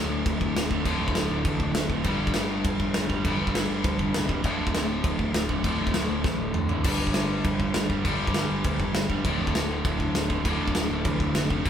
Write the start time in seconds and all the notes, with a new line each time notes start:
Already playing: D1 D2 A2 D3
0.26 D1, kick, crash
0.41 D1, kick
0.55 D1, snare, crash
0.69 D1 D2 A2 D3, kick
0.84 D1 D2 A2 D3, kick, crash
1.00 D1
1.08 kick
1.15 D1, snare, crash
1.30 D1
1.45 A1, kick, crash
1.60 D1, kick
1.75 D1, snare, crash
1.89 D2 A2 D3, kick
2.04 G1 G2 D3 G3, kick, crash
2.20 G1
2.27 kick
2.34 G1, snare, crash
2.64 G1, kick, crash
2.80 G1, kick
2.94 G1, snare, crash
3.09 G1 G2 D3 G3, kick
3.24 G1 G2 D3 G3, kick, crash
3.40 G1
3.47 kick
3.55 G1, snare, crash
3.70 G1
3.84 D2, kick, crash
3.99 G1, kick
4.14 C1, snare, crash
4.28 G2 D3 G3, kick
4.43 D1 D2 A2 D3, kick, crash
4.59 D1
4.67 kick
4.74 D1, snare, crash
5.04 D1, kick, crash
5.19 D1, kick
5.33 D1, snare, crash
5.48 D1 D2 A2 D3, kick
5.63 D1 D2 A2 D3, kick, crash
5.79 D1
5.87 kick
5.94 D1, snare, crash
6.09 D1
6.24 A1, kick, snare
6.40 D1
6.54 D1, mid tom
6.69 A2 D3, floor tom
6.73 D2
6.84 G1 G2 D3 G3, kick, crash
7.00 G1
7.07 kick
7.14 G1, snare, crash
7.44 G1, kick, crash
7.60 G1, kick
7.74 G1, snare, crash
7.89 G1 G2 D3 G3, kick
8.04 G1 G2 D3 G3, kick, crash
8.19 G1
8.27 kick
8.34 G1, snare, crash
8.50 G1
8.64 D2, kick, crash
8.80 G1, kick
8.94 G1, snare, crash
9.09 G2 D3 G3, kick
9.24 D1 D2 A2 D3, kick, crash
9.39 D1
9.47 kick
9.54 D1, snare, crash
9.85 D1, kick, crash
10.00 D1, kick
10.15 D1, snare, crash
10.29 D1 A2 D3, kick
10.33 D2
10.44 D1 D2 A2 D3, kick, crash
10.60 D1
10.68 kick
10.75 D1, snare, crash
10.89 D1
11.05 A1, kick, crash
11.20 D1, kick
11.35 F1, snare, crash
11.49 D2 A2 D3, kick
11.64 G1 G2 D3, kick, crash